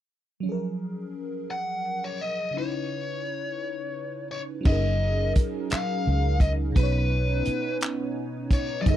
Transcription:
0.40 fm electric piano F#3 C#4
0.46 fm electric piano F3 G#4
0.52 fm electric piano A#4
1.51 lead electric guitar F#5
2.04 lead electric guitar C#5
2.21 lead electric guitar D#5
2.51 fm electric piano C#3 C#4
2.57 fm electric piano D#4 E4, lead electric guitar C#5
2.62 fm electric piano B4
4.31 lead electric guitar C#5
4.61 fm electric piano F#3 C#4
4.65 fingered electric bass F#1, analog synth pad F#3 C#4 D#4 G#4 A#4, fm electric piano D#4, lead electric guitar D#5, kick, crash
4.69 fm electric piano G#4 A#4
5.36 muted fingered electric bass stroke, kick, closed hi-hat
5.70 lead electric guitar F5, muted fingered electric bass stroke, clap, closed hi-hat
6.07 fingered electric bass C#2
6.40 lead electric guitar D#5, kick, closed hi-hat
6.72 fm electric piano B2 B3, kick
6.76 fingered electric bass B1, analog synth pad B3 C#4, fm electric piano D#4, lead electric guitar B4, closed hi-hat
6.80 fm electric piano B4 C#5
7.45 muted fingered electric bass stroke, closed hi-hat
7.81 clap, closed hi-hat
8.51 lead electric guitar C#5, kick, closed hi-hat
8.82 fm electric piano F#3 C#4, lead electric guitar D5
8.86 fingered electric bass F#1, analog synth pad F#3 C#4 G#4 A#4, fm electric piano D#4, lead electric guitar D#5, kick, closed hi-hat
8.90 fm electric piano G#4 A#4

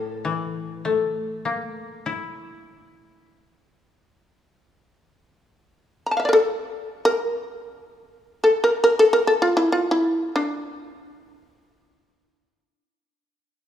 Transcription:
Already playing: koto A2, shamisen A4
0.25 koto E3
0.85 koto A3
1.45 koto A#3
2.06 koto E4
6.06 shamisen A#5
6.11 shamisen A5
6.17 shamisen E5 F5
6.25 shamisen A#4 D5
6.33 shamisen A4
7.05 shamisen A#4
8.44 shamisen A4
8.64 shamisen A#4
8.84 shamisen A#4
8.99 shamisen A4
9.13 shamisen A#4
9.27 shamisen A4
9.42 shamisen F4
9.57 shamisen E4
9.72 shamisen F4
9.91 shamisen E4
10.36 shamisen D4

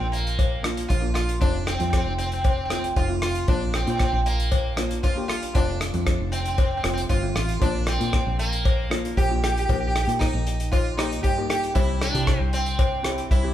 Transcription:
Already playing: steel pan A#3 D4 F4
0.00 fingered electric bass A#1
0.12 sitar A#3, closed hi-hat
0.27 closed hi-hat
0.39 kick, closed hi-hat, cowbell
0.63 steel pan A#3 D4 F4, cross-stick, closed hi-hat
0.77 closed hi-hat
0.88 fingered electric bass A#1, sitar F4, kick, closed hi-hat, cowbell
1.01 steel pan A#3 D4 F4
1.14 sitar F4, cross-stick, closed hi-hat
1.29 closed hi-hat
1.40 fingered electric bass F1, steel pan A3 C4 F4, sitar D4, kick, closed hi-hat, cowbell
1.67 sitar C4, cross-stick, closed hi-hat
1.74 sitar C4
1.79 fingered electric bass F2, steel pan A3 C4 F4, sitar C4, closed hi-hat
1.90 sitar C4, kick, cross-stick, closed hi-hat, cowbell
1.97 sitar C4
2.04 fingered electric bass F1, sitar C4
2.18 sitar C4, closed hi-hat
2.26 sitar C4
2.32 sitar C4, closed hi-hat
2.41 sitar C4, kick, closed hi-hat, cowbell
2.49 sitar C4
2.57 sitar C4
2.65 sitar C4
2.70 steel pan A3 C4 F4, sitar C4, cross-stick, closed hi-hat, cowbell
2.79 sitar C4
2.84 closed hi-hat
2.96 fingered electric bass F1, sitar F4, kick, closed hi-hat, cowbell
3.09 steel pan A3 C4 F4
3.22 sitar F4, cross-stick, closed hi-hat
3.35 closed hi-hat
3.48 fingered electric bass A#1, steel pan A#3 D4 F4, sitar D4, kick, closed hi-hat, cowbell
3.74 sitar C4, cross-stick, closed hi-hat
3.82 steel pan A#3, sitar C4
3.87 fingered electric bass A#2, sitar C4, steel pan D4 F4, closed hi-hat
3.97 sitar C4, kick, cross-stick, closed hi-hat, cowbell
4.04 sitar C4
4.12 fingered electric bass A#1, sitar C4
4.26 sitar A#3, closed hi-hat
4.40 closed hi-hat
4.52 kick, closed hi-hat, cowbell
4.76 steel pan A#3 D4 F4, cross-stick, closed hi-hat, cowbell
4.91 closed hi-hat
5.03 fingered electric bass F#1, sitar F4, kick, closed hi-hat, cowbell
5.16 steel pan A#3 D4 G4
5.28 sitar F4, cross-stick, closed hi-hat
5.43 closed hi-hat
5.54 fingered electric bass F1, steel pan A3 C4 F4, sitar D4, kick, closed hi-hat, cowbell
5.81 cross-stick, closed hi-hat
5.93 fingered electric bass F2, steel pan A3 C4 F4, closed hi-hat
6.07 kick, cross-stick, closed hi-hat, cowbell
6.20 fingered electric bass F1
6.32 sitar C4, closed hi-hat
6.40 sitar C4
6.46 sitar C4, closed hi-hat
6.54 sitar C4, closed hi-hat
6.58 kick, cowbell
6.63 sitar C4
6.71 sitar C4
6.77 sitar C4
6.83 fingered electric bass F1, steel pan A3 C4 F4, sitar C4, cross-stick, closed hi-hat, cowbell
6.93 sitar C4
6.98 closed hi-hat
7.09 fingered electric bass G1, sitar F4, kick, closed hi-hat, cowbell
7.22 steel pan A3 C4 F4
7.35 fingered electric bass A1, sitar F4, cross-stick, closed hi-hat
7.49 closed hi-hat
7.60 fingered electric bass A#1, steel pan A#3 D4 F4, sitar D4, kick, closed hi-hat, cowbell
7.87 sitar C4, cross-stick, closed hi-hat
7.98 fingered electric bass A#2, steel pan A#3 D4 F4, closed hi-hat
8.13 kick, cross-stick, closed hi-hat, cowbell
8.27 fingered electric bass A#1
8.39 sitar A#3, closed hi-hat
8.53 closed hi-hat
8.65 kick, closed hi-hat, cowbell
8.90 steel pan A#3 D4 F4, cross-stick, closed hi-hat, cowbell
9.05 closed hi-hat
9.17 fingered electric bass A#1, sitar G4, kick, closed hi-hat, cowbell
9.29 steel pan A#3 D4 F4
9.44 sitar G4, cross-stick, closed hi-hat
9.52 sitar G4
9.58 sitar G4, closed hi-hat
9.65 steel pan A#3, sitar G4
9.69 fingered electric bass A#1, steel pan D#4 G4, sitar G4, kick, closed hi-hat, cowbell
9.80 sitar G4
9.87 sitar G4
9.95 sitar G4, cross-stick, closed hi-hat
10.03 sitar G4
10.07 fingered electric bass A#2, steel pan A#3 D#4 G4, closed hi-hat
10.19 sitar D#4, kick, cross-stick, closed hi-hat, cowbell
10.34 fingered electric bass A#1
10.47 closed hi-hat
10.60 closed hi-hat
10.72 sitar F4, kick, closed hi-hat, cowbell
10.97 steel pan A#3 D#4 G4, sitar D#4, cross-stick, closed hi-hat, cowbell
11.12 closed hi-hat
11.23 fingered electric bass G2, sitar G4, kick, closed hi-hat, cowbell
11.37 steel pan A#3 D#4 G4
11.49 sitar G4, cross-stick, closed hi-hat
11.63 closed hi-hat
11.74 fingered electric bass C2, steel pan C4 E4 G4, sitar E4, kick, closed hi-hat, cowbell
12.01 sitar D4, cross-stick, closed hi-hat
12.14 fingered electric bass C3, steel pan C4 E4 G4, closed hi-hat
12.27 kick, cross-stick, closed hi-hat, cowbell
12.40 fingered electric bass C2
12.53 sitar C4, closed hi-hat
12.66 closed hi-hat
12.79 kick, closed hi-hat, cowbell
13.03 steel pan C4 E4 G4, cross-stick, closed hi-hat, cowbell
13.18 closed hi-hat
13.31 fingered electric bass C2, sitar E4, kick, closed hi-hat, cowbell
13.43 steel pan C4 E4 G4

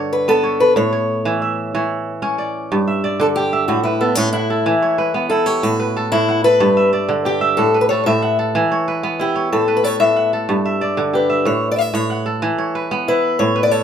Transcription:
Already playing: kora G2 D3 B4 C#5
0.13 steel-string acoustic guitar B4
0.28 kora B3 B4, steel-string acoustic guitar A4
0.43 kora C#5
0.60 steel-string acoustic guitar B4
0.76 kora A2, steel-string acoustic guitar C#5
0.93 kora C#5
1.25 kora E3
1.42 kora E5
1.75 kora E3 C#5
2.22 kora C#4 C#5
2.38 kora D5
2.72 kora G2
2.88 kora E5
3.04 kora D5
3.20 kora D3, steel-string acoustic guitar A4
3.36 steel-string acoustic guitar G4, kora G4
3.53 kora E5
3.68 kora A2, steel-string acoustic guitar F#4
3.83 steel-string acoustic guitar E4, kora B4
4.01 steel-string acoustic guitar B3, kora A4
4.15 kora A2, steel-string acoustic guitar C#4
4.33 steel-string acoustic guitar E4, kora F#5
4.50 kora A4
4.66 kora E3
4.82 kora C#5
4.98 kora B4
5.14 kora B3
5.29 kora E4, steel-string acoustic guitar A4
5.46 steel-string acoustic guitar G4, kora C#5
5.63 kora A2, steel-string acoustic guitar F#4
5.80 kora B4
5.97 kora A4
6.12 kora A2, steel-string acoustic guitar E4
6.29 kora F#5
6.44 kora A4, steel-string acoustic guitar B4
6.60 kora G2
6.77 kora E5
6.93 kora D5
7.09 kora D3
7.25 kora G4, steel-string acoustic guitar G4
7.41 kora E5
7.57 kora A2, steel-string acoustic guitar A4
7.74 kora B4
7.81 steel-string acoustic guitar B4
7.89 kora A4, steel-string acoustic guitar C#5
8.06 kora A2, steel-string acoustic guitar E5
8.22 kora F#5
8.39 kora A4
8.55 kora E3
8.72 kora C#5
8.88 kora B4
9.03 kora B3
9.19 kora E4, steel-string acoustic guitar G4
9.36 kora C#5
9.52 kora A2, steel-string acoustic guitar A4
9.68 kora B4
9.77 steel-string acoustic guitar B4
9.84 kora A4, steel-string acoustic guitar C#5
10.00 kora A2, steel-string acoustic guitar E5
10.16 kora F#5
10.33 kora A4
10.49 kora G2
10.65 kora E5
10.81 kora D5
10.97 kora D3
11.13 kora G4, steel-string acoustic guitar B4
11.30 kora E5
11.45 kora A2, steel-string acoustic guitar C#5
11.71 steel-string acoustic guitar D5
11.78 steel-string acoustic guitar E5
11.94 kora A2, steel-string acoustic guitar C#5
12.10 kora F#5
12.26 kora A4
12.42 kora E3
12.58 kora C#5
12.75 kora B4
12.91 kora B3
13.08 kora E4, steel-string acoustic guitar B4
13.39 kora A2, steel-string acoustic guitar C#5
13.56 kora B4
13.63 steel-string acoustic guitar D5
13.71 kora A4, steel-string acoustic guitar C#5

